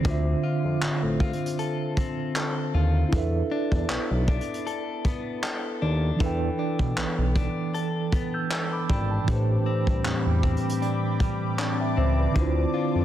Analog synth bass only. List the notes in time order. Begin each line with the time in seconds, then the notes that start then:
0.05 D2
0.65 F2
0.82 A1
1.03 A1
2.74 D#2
3.13 E2
3.72 E2
3.90 B1
4.11 B1
5.82 D#2
6.21 E2
6.79 B2
6.98 B1
7.18 B1
8.90 G#1
9.28 A1
9.87 C2
10.05 E2
10.26 E2
11.97 C#2
12.36 D2
12.95 F2